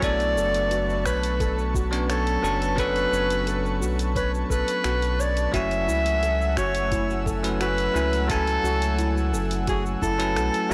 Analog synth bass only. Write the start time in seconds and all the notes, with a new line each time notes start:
0.02 B1
0.36 F#1
1.06 B1
2.43 F#1
3.12 F#1
3.81 B1
4.50 B1
4.85 B1
5.54 F#1
5.88 C#2
6.57 F#1
7.95 C#2
8.64 C#2
9.33 F#1
10.02 F#1
10.36 B1
10.70 E1